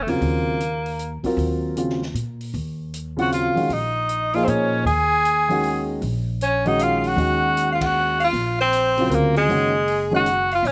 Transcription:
0.02 0.11 A3 soft
0.07 0.20 E2 medium
0.07 0.57 C#3 soft
0.07 0.57 F#3 soft
0.07 1.25 A#3 medium
0.07 0.58 C4 medium
0.07 0.58 F4 medium
0.07 open hi-hat soft
0.21 1.20 D#2 medium
0.21 open hi-hat soft
0.60 closed hi-hat soft
0.86 open hi-hat soft
0.99 closed hi-hat soft
1.23 1.74 F#3 medium
1.23 1.74 C4 medium
1.23 1.75 F4 medium
1.23 1.75 A#4 medium
1.23 muted upright bass stroke soft
1.23 kick soft
1.23 open hi-hat soft
1.37 2.11 D#2 medium
1.37 open hi-hat soft
1.76 1.99 C#3 soft
1.76 1.99 F#3 soft
1.76 1.99 C4 soft
1.76 2.00 F4 medium
1.76 closed hi-hat soft
1.89 snare soft
2.02 snare soft
2.14 2.51 A#2 medium
2.14 closed hi-hat soft
2.41 open hi-hat soft
2.54 3.52 D#2 medium
2.54 open hi-hat soft
2.94 closed hi-hat soft
3.17 3.53 C#3 medium
3.17 3.54 F#3 medium
3.17 3.54 C4 medium
3.17 3.55 F4 medium
3.17 3.31 F#5 medium
3.17 open hi-hat soft
3.21 3.32 F#4 medium
3.32 3.74 F4 medium
3.32 3.74 F5 medium
3.32 closed hi-hat soft
3.55 3.68 D#3 medium
3.55 3.68 G#3 soft
3.55 3.69 C#4 soft
3.55 3.69 F#4 medium
3.55 muted upright bass stroke soft
3.55 open hi-hat soft
3.69 4.43 A#1 medium
3.69 4.36 D#4 medium
3.69 4.36 D#5 medium
3.69 open hi-hat soft
4.09 closed hi-hat soft
4.34 4.84 F3 medium
4.34 4.84 A#3 medium
4.34 4.84 D#4 medium
4.34 4.45 F4 medium
4.34 4.84 G#4 medium
4.34 4.45 F5 medium
4.34 open hi-hat soft
4.44 4.83 A#2 medium
4.44 4.50 C4 medium
4.44 4.49 C5 soft
4.44 4.86 C#5 medium
4.44 closed hi-hat soft
4.49 4.86 C#4 medium
4.85 5.97 D#2 medium
4.85 5.84 G#4 medium
4.85 5.84 G#5 medium
4.85 open hi-hat soft
5.25 closed hi-hat soft
5.49 5.99 D#3 medium
5.49 5.99 G#3 medium
5.49 6.00 C#4 medium
5.49 6.00 F#4 medium
5.49 open hi-hat soft
5.64 open hi-hat soft
6.02 7.14 A#1 medium
6.02 open hi-hat soft
6.41 6.69 C#4 medium
6.41 6.67 C#5 medium
6.41 closed hi-hat soft
6.65 7.15 D#3 medium
6.65 7.15 G#3 medium
6.65 7.16 C#4 medium
6.65 6.84 D#4 medium
6.65 7.16 F#4 medium
6.65 6.82 D#5 medium
6.65 open hi-hat soft
6.79 6.99 F4 medium
6.79 6.96 F5 medium
6.79 closed hi-hat soft
6.96 7.10 F4 medium
6.96 7.08 F5 medium
7.04 7.71 F#5 medium
7.04 open hi-hat soft
7.08 7.73 F#4 medium
7.16 8.29 D#2 medium
7.16 8.25 D#3 medium
7.16 8.25 G#3 soft
7.16 8.25 C#4 soft
7.16 8.26 F#4 medium
7.16 open hi-hat soft
7.57 closed hi-hat soft
7.72 7.88 F4 medium
7.72 7.83 F5 medium
7.81 8.19 F#5 medium
7.81 kick medium
7.81 ride medium
7.86 8.22 F#4 medium
8.20 8.56 F5 medium
8.20 open hi-hat soft
8.24 8.58 F4 medium
8.33 9.06 A#1 medium
8.33 open hi-hat soft
8.60 9.16 C4 medium
8.60 9.12 C5 medium
8.73 closed hi-hat soft
8.97 9.47 C#3 medium
8.97 9.47 F#3 medium
8.97 9.47 C4 medium
8.97 9.48 F4 medium
8.97 open hi-hat soft
9.10 9.46 D2 medium
9.10 9.35 A#4 medium
9.10 closed hi-hat soft
9.14 9.36 A#3 medium
9.36 10.09 G#3 medium
9.36 10.09 G#4 medium
9.36 open hi-hat soft
9.48 10.61 F#1 medium
9.48 9.71 D#3 medium
9.48 9.71 G#3 soft
9.48 9.72 C#4 medium
9.48 9.72 F#4 medium
9.48 open hi-hat soft
9.88 open hi-hat soft
10.11 10.24 D#3 medium
10.11 10.24 G#3 medium
10.11 10.25 C#4 medium
10.11 10.25 F#4 medium
10.11 10.49 F#5 medium
10.16 10.50 F#4 medium
10.26 closed hi-hat soft
10.51 10.69 F4 medium
10.51 10.66 F5 medium
10.51 open hi-hat soft
10.63 10.72 A#1 medium
10.63 10.72 C#5 medium
10.63 open hi-hat soft
10.67 10.72 C#4 medium

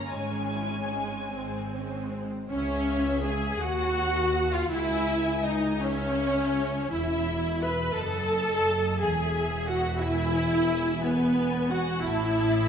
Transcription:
0.00 0.10 A#3 soft
0.00 0.11 A#3 medium
0.00 1.28 C#4 medium
0.00 1.28 C#5 medium
0.00 0.11 A#5 medium
0.10 1.12 G#1 medium
0.10 1.12 G#2 medium
0.10 0.29 G#3 soft
0.10 2.26 G#3 soft
0.10 2.12 G#5 medium
0.31 0.52 C#4 soft
0.50 0.71 E4 soft
0.72 0.92 C#4 soft
0.92 1.12 G#3 soft
1.11 1.31 C#4 soft
1.31 2.32 G#1 medium
1.31 2.32 G#2 medium
1.31 1.68 C4 soft
1.31 2.30 C4 medium
1.72 2.12 C#4 medium
2.12 2.51 C4 soft
2.51 3.57 C#2 medium
2.51 3.20 C#4 medium
2.51 3.21 C#5 medium
2.51 3.57 E5 medium
3.24 3.61 G#4 medium
3.24 3.61 G#5 medium
3.60 4.71 D#2 medium
3.60 4.52 F#4 loud
3.60 4.53 F#5 medium
3.60 4.71 F#5 medium
4.52 4.71 F4 medium
4.52 4.71 F5 medium
4.70 6.88 C#2 medium
4.70 5.44 E4 medium
4.70 5.44 E5 medium
4.70 5.81 G#5 medium
5.45 5.81 D#4 medium
5.45 5.82 D#5 medium
5.82 6.91 C#4 medium
5.82 6.92 C#5 medium
5.82 6.90 E5 medium
6.92 7.95 E1 medium
6.92 7.94 E2 medium
6.92 7.61 E4 medium
6.92 7.94 E5 medium
6.92 7.60 E5 medium
7.62 7.96 B4 medium
7.62 7.96 B5 medium
7.96 9.00 F#1 medium
7.96 9.00 F#2 medium
7.96 9.02 A4 loud
7.96 9.02 D#5 medium
7.96 9.02 A5 medium
9.01 12.03 E1 medium
9.01 12.04 E2 medium
9.01 9.67 G#4 medium
9.01 10.02 E5 medium
9.01 9.67 G#5 medium
9.67 10.02 F#4 medium
9.67 10.01 F#5 medium
10.01 11.03 E4 loud
10.01 11.02 E5 medium
10.01 11.04 G#5 medium
11.03 11.69 B3 medium
11.03 11.71 B4 medium
11.03 12.02 G#5 medium
11.70 12.03 F#4 medium
11.70 12.03 F#5 medium
12.03 12.69 A1 medium
12.03 12.69 A2 medium
12.03 12.69 E4 medium
12.03 12.69 E5 medium
12.03 12.36 A5 medium
12.37 12.69 A5 medium

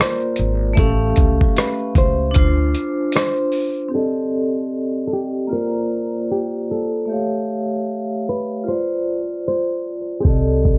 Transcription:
0.00 0.72 A#3 medium
0.00 0.73 F4 medium
0.00 0.74 A#4 medium
0.00 0.75 C5 medium
0.00 0.79 C5 medium
0.00 0.76 D5 medium
0.00 cross-stick loud
0.36 0.75 G#1 medium
0.36 closed hi-hat medium
0.73 2.30 A3 medium
0.73 2.32 G4 soft
0.73 2.31 E5 medium
0.73 kick loud
0.73 closed hi-hat medium
0.78 1.15 A1 medium
0.78 2.33 C#4 medium
0.78 1.58 A4 medium
0.78 2.34 F5 medium
1.16 1.40 C#2 medium
1.16 kick medium
1.16 closed hi-hat medium
1.41 kick medium
1.57 1.98 B4 medium
1.57 cross-stick loud
1.57 closed hi-hat medium
1.95 2.33 C#2 medium
1.95 3.14 C5 medium
1.95 kick medium
1.95 closed hi-hat medium
2.31 3.88 D4 medium
2.31 3.90 F4 medium
2.31 closed hi-hat medium
2.36 2.73 D2 loud
2.36 3.92 C5 medium
2.36 kick loud
2.75 closed hi-hat medium
3.12 3.95 C5 medium
3.12 closed hi-hat medium
3.16 cross-stick loud
3.52 open hi-hat soft
3.88 5.45 C4 medium
3.88 5.46 G4 soft
3.88 5.47 A4 soft
3.94 5.03 A4 medium
3.94 5.48 D5 soft
3.94 5.49 D#5 medium
5.07 5.12 A4 medium
5.13 5.53 G4 medium
5.47 7.04 A#3 medium
5.47 7.05 F4 medium
5.53 6.33 A#4 medium
5.53 7.07 C5 medium
5.53 7.08 D5 medium
6.31 6.71 G4 medium
6.71 8.24 A4 medium
7.06 8.62 A3 medium
7.06 8.64 G4 medium
7.06 8.63 E5 medium
7.11 8.65 C#5 medium
7.11 8.66 F5 medium
8.29 8.68 B4 medium
8.64 10.20 F4 medium
8.64 10.22 C5 medium
8.68 9.42 C5 medium
8.68 10.24 D5 medium
9.48 10.16 C5 medium
10.20 10.78 C4 medium
10.20 10.78 G4 medium
10.20 10.25 G#4 medium
10.25 10.78 C2 medium
10.25 10.78 A4 soft
10.25 10.78 A4 medium
10.25 10.78 D5 medium
10.25 10.78 D#5 medium
10.25 kick loud
10.25 closed hi-hat medium
10.64 kick medium
10.64 closed hi-hat medium

